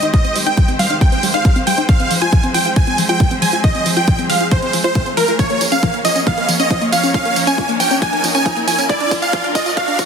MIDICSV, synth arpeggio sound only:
0, 0, Header, 1, 2, 480
1, 0, Start_track
1, 0, Tempo, 437956
1, 149, Time_signature, 4, 2, 24, 8
1, 11019, End_track
2, 0, Start_track
2, 0, Title_t, "Synth arpeggio sound"
2, 0, Program_c, 0, 84
2, 29, Note_on_c, 0, 63, 76
2, 110, Note_off_c, 0, 63, 0
2, 149, Note_on_c, 0, 55, 80
2, 181, Note_off_c, 0, 55, 0
2, 269, Note_on_c, 0, 60, 73
2, 351, Note_off_c, 0, 60, 0
2, 389, Note_on_c, 0, 55, 71
2, 471, Note_off_c, 0, 55, 0
2, 509, Note_on_c, 0, 63, 75
2, 563, Note_off_c, 0, 63, 0
2, 629, Note_on_c, 0, 55, 97
2, 662, Note_off_c, 0, 55, 0
2, 749, Note_on_c, 0, 60, 79
2, 830, Note_off_c, 0, 60, 0
2, 869, Note_on_c, 0, 55, 76
2, 951, Note_off_c, 0, 55, 0
2, 989, Note_on_c, 0, 63, 76
2, 1070, Note_off_c, 0, 63, 0
2, 1109, Note_on_c, 0, 55, 81
2, 1142, Note_off_c, 0, 55, 0
2, 1229, Note_on_c, 0, 60, 74
2, 1310, Note_off_c, 0, 60, 0
2, 1349, Note_on_c, 0, 55, 80
2, 1431, Note_off_c, 0, 55, 0
2, 1469, Note_on_c, 0, 63, 72
2, 1551, Note_off_c, 0, 63, 0
2, 1589, Note_on_c, 0, 55, 101
2, 1671, Note_off_c, 0, 55, 0
2, 1709, Note_on_c, 0, 60, 75
2, 1790, Note_off_c, 0, 60, 0
2, 1830, Note_on_c, 0, 55, 76
2, 1911, Note_off_c, 0, 55, 0
2, 1949, Note_on_c, 0, 63, 74
2, 2030, Note_off_c, 0, 63, 0
2, 2069, Note_on_c, 0, 53, 82
2, 2102, Note_off_c, 0, 53, 0
2, 2189, Note_on_c, 0, 60, 76
2, 2271, Note_off_c, 0, 60, 0
2, 2309, Note_on_c, 0, 53, 74
2, 2390, Note_off_c, 0, 53, 0
2, 2430, Note_on_c, 0, 65, 76
2, 2484, Note_off_c, 0, 65, 0
2, 2549, Note_on_c, 0, 53, 96
2, 2582, Note_off_c, 0, 53, 0
2, 2669, Note_on_c, 0, 60, 78
2, 2751, Note_off_c, 0, 60, 0
2, 2789, Note_on_c, 0, 53, 75
2, 2871, Note_off_c, 0, 53, 0
2, 2909, Note_on_c, 0, 65, 76
2, 2991, Note_off_c, 0, 65, 0
2, 3029, Note_on_c, 0, 53, 84
2, 3062, Note_off_c, 0, 53, 0
2, 3148, Note_on_c, 0, 60, 73
2, 3230, Note_off_c, 0, 60, 0
2, 3268, Note_on_c, 0, 53, 81
2, 3350, Note_off_c, 0, 53, 0
2, 3388, Note_on_c, 0, 65, 75
2, 3470, Note_off_c, 0, 65, 0
2, 3508, Note_on_c, 0, 53, 100
2, 3590, Note_off_c, 0, 53, 0
2, 3628, Note_on_c, 0, 60, 74
2, 3710, Note_off_c, 0, 60, 0
2, 3748, Note_on_c, 0, 53, 73
2, 3830, Note_off_c, 0, 53, 0
2, 3868, Note_on_c, 0, 65, 75
2, 3950, Note_off_c, 0, 65, 0
2, 3988, Note_on_c, 0, 53, 80
2, 4021, Note_off_c, 0, 53, 0
2, 4107, Note_on_c, 0, 60, 74
2, 4190, Note_off_c, 0, 60, 0
2, 4227, Note_on_c, 0, 53, 73
2, 4310, Note_off_c, 0, 53, 0
2, 4348, Note_on_c, 0, 65, 76
2, 4403, Note_off_c, 0, 65, 0
2, 4468, Note_on_c, 0, 53, 96
2, 4501, Note_off_c, 0, 53, 0
2, 4588, Note_on_c, 0, 60, 75
2, 4670, Note_off_c, 0, 60, 0
2, 4709, Note_on_c, 0, 53, 76
2, 4791, Note_off_c, 0, 53, 0
2, 4829, Note_on_c, 0, 65, 77
2, 4910, Note_off_c, 0, 65, 0
2, 4948, Note_on_c, 0, 53, 85
2, 4981, Note_off_c, 0, 53, 0
2, 5068, Note_on_c, 0, 60, 74
2, 5150, Note_off_c, 0, 60, 0
2, 5188, Note_on_c, 0, 53, 76
2, 5270, Note_off_c, 0, 53, 0
2, 5307, Note_on_c, 0, 65, 76
2, 5390, Note_off_c, 0, 65, 0
2, 5428, Note_on_c, 0, 53, 101
2, 5510, Note_off_c, 0, 53, 0
2, 5548, Note_on_c, 0, 60, 75
2, 5630, Note_off_c, 0, 60, 0
2, 5668, Note_on_c, 0, 53, 75
2, 5750, Note_off_c, 0, 53, 0
2, 5788, Note_on_c, 0, 65, 77
2, 5870, Note_off_c, 0, 65, 0
2, 5908, Note_on_c, 0, 53, 82
2, 5941, Note_off_c, 0, 53, 0
2, 6028, Note_on_c, 0, 58, 78
2, 6110, Note_off_c, 0, 58, 0
2, 6149, Note_on_c, 0, 53, 72
2, 6230, Note_off_c, 0, 53, 0
2, 6269, Note_on_c, 0, 61, 74
2, 6323, Note_off_c, 0, 61, 0
2, 6389, Note_on_c, 0, 53, 100
2, 6421, Note_off_c, 0, 53, 0
2, 6509, Note_on_c, 0, 58, 79
2, 6590, Note_off_c, 0, 58, 0
2, 6629, Note_on_c, 0, 53, 77
2, 6710, Note_off_c, 0, 53, 0
2, 6748, Note_on_c, 0, 61, 74
2, 6830, Note_off_c, 0, 61, 0
2, 6869, Note_on_c, 0, 53, 82
2, 6901, Note_off_c, 0, 53, 0
2, 6989, Note_on_c, 0, 58, 75
2, 7070, Note_off_c, 0, 58, 0
2, 7108, Note_on_c, 0, 53, 77
2, 7190, Note_off_c, 0, 53, 0
2, 7228, Note_on_c, 0, 61, 71
2, 7310, Note_off_c, 0, 61, 0
2, 7348, Note_on_c, 0, 53, 107
2, 7430, Note_off_c, 0, 53, 0
2, 7468, Note_on_c, 0, 58, 78
2, 7550, Note_off_c, 0, 58, 0
2, 7588, Note_on_c, 0, 53, 78
2, 7670, Note_off_c, 0, 53, 0
2, 7709, Note_on_c, 0, 61, 78
2, 7790, Note_off_c, 0, 61, 0
2, 7829, Note_on_c, 0, 53, 81
2, 7862, Note_off_c, 0, 53, 0
2, 7950, Note_on_c, 0, 58, 75
2, 8031, Note_off_c, 0, 58, 0
2, 8070, Note_on_c, 0, 53, 73
2, 8151, Note_off_c, 0, 53, 0
2, 8188, Note_on_c, 0, 61, 76
2, 8243, Note_off_c, 0, 61, 0
2, 8308, Note_on_c, 0, 53, 101
2, 8341, Note_off_c, 0, 53, 0
2, 8428, Note_on_c, 0, 58, 80
2, 8510, Note_off_c, 0, 58, 0
2, 8548, Note_on_c, 0, 53, 80
2, 8630, Note_off_c, 0, 53, 0
2, 8669, Note_on_c, 0, 61, 78
2, 8750, Note_off_c, 0, 61, 0
2, 8788, Note_on_c, 0, 53, 83
2, 8821, Note_off_c, 0, 53, 0
2, 8908, Note_on_c, 0, 58, 74
2, 8990, Note_off_c, 0, 58, 0
2, 9028, Note_on_c, 0, 53, 76
2, 9110, Note_off_c, 0, 53, 0
2, 9148, Note_on_c, 0, 61, 77
2, 9230, Note_off_c, 0, 61, 0
2, 9268, Note_on_c, 0, 53, 104
2, 9350, Note_off_c, 0, 53, 0
2, 9387, Note_on_c, 0, 58, 79
2, 9469, Note_off_c, 0, 58, 0
2, 9508, Note_on_c, 0, 53, 81
2, 9590, Note_off_c, 0, 53, 0
2, 9628, Note_on_c, 0, 61, 79
2, 9710, Note_off_c, 0, 61, 0
2, 9747, Note_on_c, 0, 53, 85
2, 9781, Note_off_c, 0, 53, 0
2, 9868, Note_on_c, 0, 62, 77
2, 9950, Note_off_c, 0, 62, 0
2, 9988, Note_on_c, 0, 53, 73
2, 10070, Note_off_c, 0, 53, 0
2, 10108, Note_on_c, 0, 65, 79
2, 10163, Note_off_c, 0, 65, 0
2, 10228, Note_on_c, 0, 53, 100
2, 10261, Note_off_c, 0, 53, 0
2, 10348, Note_on_c, 0, 62, 81
2, 10430, Note_off_c, 0, 62, 0
2, 10469, Note_on_c, 0, 53, 78
2, 10550, Note_off_c, 0, 53, 0
2, 10588, Note_on_c, 0, 65, 79
2, 10670, Note_off_c, 0, 65, 0
2, 10709, Note_on_c, 0, 53, 84
2, 10742, Note_off_c, 0, 53, 0
2, 10828, Note_on_c, 0, 62, 73
2, 10910, Note_off_c, 0, 62, 0
2, 10949, Note_on_c, 0, 53, 83
2, 11019, Note_off_c, 0, 53, 0
2, 11019, End_track
0, 0, End_of_file